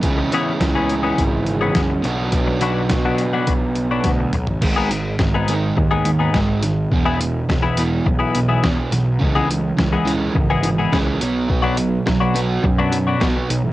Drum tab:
CC |----------------|----------------|x---------------|----------------|
HH |x-x-x-x-x-x-x-x-|x-x-x-x-x-x-x-x-|--x---x---x---x-|--x---x---x---x-|
SD |----o-------o---|----o-------o---|----o-------o-o-|----o-------o-o-|
T2 |----------------|--------------o-|----------------|----------------|
FT |----------------|---------------o|----------------|----------------|
BD |o---o---o---o---|o---o---o---o---|o---o---o---o---|o---o---o---o---|

CC |----------------|----------------|
HH |--x---x---x---x-|--x---x---x---x-|
SD |----o-------o---|----o-------o---|
T2 |----------------|----------------|
FT |----------------|----------------|
BD |o---o---o---o---|o---o---o---o---|